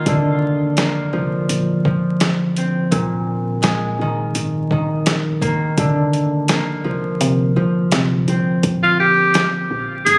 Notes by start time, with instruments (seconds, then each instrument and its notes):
Already playing: harp D#3 A#3
0.06 fm bass C2, harp D3, kick, closed hi-hat
0.77 harp A#3, snare, closed hi-hat
1.13 fm bass C2, harp F3
1.49 fm bass A#1, closed hi-hat
1.85 harp F3, kick
2.20 snare, closed hi-hat
2.57 harp C4, closed hi-hat
2.91 fm bass A#1, harp A#2, kick, closed hi-hat
3.62 harp G#3, snare, closed hi-hat
3.99 fm bass A#1, harp D#3
4.35 fm bass G#1, closed hi-hat
4.71 harp D#3, kick
5.06 snare, closed hi-hat
5.41 harp A#3, kick, closed hi-hat
5.78 fm bass C2, harp D3, kick, closed hi-hat
6.13 closed hi-hat
6.48 harp A#3, snare, closed hi-hat
6.84 fm bass C2, harp F3
7.21 fm bass C3, closed hi-hat
7.56 fm bass C2, harp F3
7.92 fm bass C3, snare, closed hi-hat
8.28 fm bass C2, harp C4, closed hi-hat
8.63 fm bass A#1, kick, closed hi-hat
8.84 tenor saxophone F4
9.00 tenor saxophone G4
9.34 snare, closed hi-hat
9.71 fm bass A#1
10.06 fm bass G#1, tenor saxophone G#4, closed hi-hat